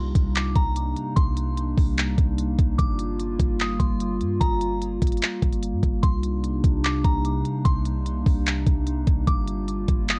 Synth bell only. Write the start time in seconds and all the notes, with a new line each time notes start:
0.36 D6
0.56 A#5
1.16 C6
2.78 D6
3.61 D#6
3.80 C6
4.41 A#5
6.03 C6
6.84 D6
7.04 A#5
7.65 C6
9.27 D6
10.10 D#6